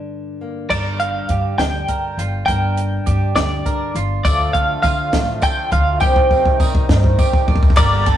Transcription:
0.00 0.69 G2 medium
0.00 1.57 D3 soft
0.00 0.67 D4 soft
0.41 0.67 A#3 soft
0.70 1.19 G1 medium
0.70 2.46 G2 medium
0.70 1.28 A#4 medium
0.70 0.98 D5 medium
0.70 kick soft
0.70 crash medium
1.00 1.58 F5 medium
1.00 closed hi-hat soft
1.29 1.54 G2 medium
1.29 1.88 D4 medium
1.29 1.88 G4 medium
1.29 kick soft
1.29 closed hi-hat medium
1.58 1.83 D2 medium
1.58 3.35 D3 medium
1.58 2.45 G5 medium
1.58 snare medium
1.58 closed hi-hat medium
1.88 2.47 D4 medium
1.88 2.17 A#4 medium
1.88 kick soft
1.88 closed hi-hat medium
2.17 2.42 G1 medium
2.17 2.47 F4 medium
2.17 closed hi-hat soft
2.46 2.96 G1 medium
2.46 4.24 G2 medium
2.46 3.06 D4 medium
2.46 3.05 A#4 medium
2.46 3.35 G5 medium
2.46 kick medium
2.46 closed hi-hat medium
2.77 closed hi-hat medium
3.06 3.31 G2 medium
3.06 3.65 D4 medium
3.06 3.64 G4 medium
3.06 kick medium
3.06 closed hi-hat medium
3.36 3.60 D2 medium
3.36 6.01 D3 medium
3.36 3.98 D5 medium
3.36 snare loud
3.36 closed hi-hat medium
3.66 4.21 D4 medium
3.66 3.94 A#4 medium
3.66 kick medium
3.66 closed hi-hat medium
3.95 4.19 G1 medium
3.95 4.24 F4 medium
3.95 closed hi-hat medium
4.24 4.73 D2 medium
4.24 4.83 D3 medium
4.24 6.00 D3 medium
4.24 4.82 F3 medium
4.24 6.00 F3 medium
4.24 6.00 A3 medium
4.24 4.84 D4 medium
4.24 6.00 F4 medium
4.24 4.84 F4 medium
4.24 4.83 A4 medium
4.24 4.84 A4 medium
4.24 4.52 D5 medium
4.24 kick medium
4.24 closed hi-hat medium
4.24 tambourine medium
4.40 tambourine soft
4.53 4.81 F5 medium
4.53 kick medium
4.53 closed hi-hat medium
4.83 5.07 D3 medium
4.83 5.13 F3 medium
4.83 5.14 D4 medium
4.83 5.41 F4 medium
4.83 5.13 F4 medium
4.83 5.43 F5 medium
4.83 kick medium
4.83 closed hi-hat medium
4.83 tambourine medium
4.87 5.12 A4 medium
5.12 5.37 A1 medium
5.12 5.73 D3 soft
5.12 5.73 F3 medium
5.12 5.73 D4 medium
5.12 5.72 F4 medium
5.12 5.71 A4 medium
5.12 kick medium
5.12 snare loud
5.12 closed hi-hat medium
5.12 tambourine soft
5.42 5.71 A4 medium
5.42 5.72 G5 loud
5.42 kick medium
5.42 closed hi-hat medium
5.42 tambourine medium
5.71 5.96 D2 medium
5.71 6.02 D4 soft
5.71 6.00 F4 medium
5.71 6.01 A4 medium
5.71 6.00 F5 medium
5.71 kick medium
5.71 closed hi-hat medium
5.98 6.50 C2 loud
5.98 7.74 C3 medium
5.98 6.60 C3 medium
5.98 7.74 D#3 medium
5.98 7.74 G3 medium
5.98 6.58 G3 medium
5.98 7.74 D#4 medium
5.98 6.58 G4 loud
5.98 7.14 G5 medium
5.98 kick loud
5.98 tambourine medium
6.03 6.59 C4 medium
6.03 6.60 D#4 medium
6.03 6.61 G4 medium
6.16 kick medium
6.31 kick medium
6.31 tambourine soft
6.45 kick medium
6.59 6.84 C3 medium
6.59 6.89 G3 medium
6.59 6.89 C4 medium
6.59 7.17 D#4 medium
6.59 6.88 D#4 medium
6.59 6.87 G4 medium
6.59 kick loud
6.59 tambourine medium
6.75 kick loud
6.89 7.13 G2 loud
6.89 7.49 C3 medium
6.89 7.48 G3 medium
6.89 7.48 C4 medium
6.89 7.48 D#4 medium
6.89 7.46 G4 medium
6.89 kick loud
6.89 snare loud
7.04 kick loud
7.19 7.47 G4 medium
7.19 kick loud
7.19 tambourine medium
7.33 kick loud
7.33 tambourine soft
7.47 7.72 C2 medium
7.47 7.77 C4 soft
7.47 7.77 D4 medium
7.47 7.78 D#4 medium
7.47 7.77 G4 medium
7.47 kick loud
7.56 kick loud
7.63 kick loud
7.63 tambourine soft
7.70 kick loud
7.76 8.17 G1 medium
7.76 8.06 G2 medium
7.76 8.17 D3 medium
7.76 8.06 D3 medium
7.76 8.17 G3 medium
7.76 8.07 G3 medium
7.76 8.17 A#3 medium
7.76 8.07 A#3 medium
7.76 8.07 D4 medium
7.76 8.17 G4 loud
7.76 8.05 G4 medium
7.76 8.05 A#4 medium
7.76 8.17 D5 loud
7.76 kick loud
7.76 clap loud
7.76 ride medium
7.76 tambourine loud
8.06 8.17 A#3 medium
8.06 8.17 D4 medium
8.06 8.17 G4 medium
8.06 8.17 A4 medium
8.06 kick medium
8.06 ride medium
8.06 tambourine soft
8.10 8.17 G3 medium

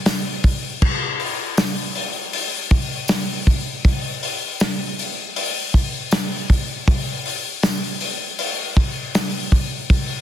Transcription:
0.06 snare loud
0.06 open hi-hat medium
0.06 tambourine medium
0.44 kick loud
0.44 open hi-hat medium
0.82 kick loud
0.82 crash loud
1.20 open hi-hat medium
1.57 snare loud
1.57 open hi-hat medium
1.57 tambourine loud
1.95 open hi-hat medium
2.33 open hi-hat medium
2.71 kick loud
2.71 open hi-hat medium
3.08 snare loud
3.08 open hi-hat loud
3.08 tambourine loud
3.47 kick medium
3.47 open hi-hat medium
3.85 kick loud
3.85 open hi-hat medium
4.23 open hi-hat medium
4.60 snare loud
4.60 open hi-hat medium
4.60 tambourine loud
4.99 open hi-hat medium
5.36 open hi-hat loud
5.74 kick medium
5.74 open hi-hat medium
6.11 snare loud
6.11 open hi-hat loud
6.11 tambourine loud
6.50 kick medium
6.50 open hi-hat medium
6.88 kick loud
6.88 open hi-hat medium
7.26 open hi-hat medium
7.63 snare loud
7.63 open hi-hat medium
7.63 tambourine loud
8.01 open hi-hat medium
8.39 open hi-hat loud
8.77 kick loud
8.77 open hi-hat medium
9.15 snare loud
9.15 open hi-hat medium
9.15 tambourine loud
9.52 kick loud
9.52 open hi-hat medium
9.90 kick loud
9.90 open hi-hat medium

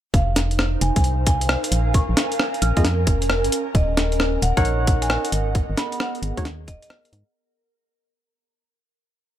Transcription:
0.14 0.78 F1 medium
0.14 2.35 D#4 medium
0.14 7.37 A#4 medium
0.14 0.28 F5 medium
0.14 kick loud
0.14 closed hi-hat medium
0.35 2.55 C5 medium
0.35 snare medium
0.35 closed hi-hat loud
0.51 closed hi-hat soft
0.59 cross-stick loud
0.59 snare soft
0.65 3.75 F5 medium
0.81 0.92 F1 loud
0.81 0.91 G#5 medium
0.81 closed hi-hat loud
0.86 4.39 G#5 medium
0.96 1.57 C2 medium
0.96 1.01 G#5 medium
0.96 kick loud
0.96 closed hi-hat medium
1.04 closed hi-hat medium
1.27 1.41 G#5 medium
1.27 kick loud
1.27 closed hi-hat loud
1.41 closed hi-hat medium
1.49 cross-stick loud
1.64 closed hi-hat medium
1.72 2.02 A#1 medium
1.72 6.05 C#4 medium
1.72 closed hi-hat loud
1.80 6.17 A#4 medium
1.94 2.08 C#6 medium
1.94 kick loud
1.94 closed hi-hat medium
2.09 2.15 A#1 medium
2.17 snare medium
2.17 closed hi-hat loud
2.32 closed hi-hat soft
2.40 cross-stick loud
2.40 snare soft
2.54 closed hi-hat soft
2.62 2.73 A#1 loud
2.62 3.07 F6 medium
2.62 closed hi-hat loud
2.77 3.09 F2 medium
2.77 2.84 A#3 medium
2.77 2.84 F4 medium
2.77 2.84 G#4 medium
2.77 2.84 D#5 medium
2.77 kick loud
2.77 closed hi-hat medium
2.85 snare medium
2.85 closed hi-hat medium
3.07 3.46 F1 loud
3.07 kick loud
3.07 closed hi-hat medium
3.22 closed hi-hat medium
3.30 cross-stick loud
3.44 3.50 G#1 medium
3.44 closed hi-hat medium
3.52 closed hi-hat loud
3.75 4.39 D#1 loud
3.75 3.89 D#5 medium
3.75 kick loud
3.75 closed hi-hat medium
3.97 snare medium
3.97 closed hi-hat loud
4.12 closed hi-hat soft
4.20 cross-stick loud
4.20 snare soft
4.33 7.36 F#5 medium
4.42 4.53 D#1 loud
4.42 4.52 F#5 medium
4.42 closed hi-hat loud
4.47 7.36 D#5 medium
4.57 5.18 A#1 medium
4.57 5.32 D#4 medium
4.57 5.32 A#4 medium
4.57 5.32 C#5 medium
4.57 4.62 F#5 medium
4.57 5.32 F#5 loud
4.57 kick loud
4.57 closed hi-hat medium
4.65 closed hi-hat medium
4.87 kick loud
4.87 closed hi-hat medium
5.02 5.07 G#5 medium
5.02 closed hi-hat medium
5.10 5.19 G#5 medium
5.10 cross-stick loud
5.25 closed hi-hat medium
5.32 5.63 G#1 medium
5.32 7.36 B3 medium
5.32 closed hi-hat loud
5.49 7.35 G#4 medium
5.55 kick loud
5.55 closed hi-hat medium
5.70 5.75 G#1 medium
5.77 5.87 B5 medium
5.77 snare medium
5.77 closed hi-hat loud
5.92 5.97 B5 medium
5.92 closed hi-hat medium
6.00 6.14 F#5 medium
6.00 cross-stick loud
6.00 snare soft
6.15 closed hi-hat soft
6.22 6.33 G#1 loud
6.22 closed hi-hat medium
6.37 6.69 D#2 medium
6.37 6.45 G#3 medium
6.37 6.45 D#4 medium
6.37 6.45 F#4 medium
6.37 6.45 C#5 medium
6.37 kick loud
6.37 closed hi-hat medium
6.45 snare medium
6.45 closed hi-hat medium
6.68 6.78 D#1 loud
6.68 6.77 D#5 medium
6.68 kick loud
6.68 closed hi-hat loud
6.82 6.88 D#5 medium
6.82 closed hi-hat medium
6.90 cross-stick loud
7.05 closed hi-hat medium
7.13 7.23 G#2 loud
7.13 closed hi-hat loud

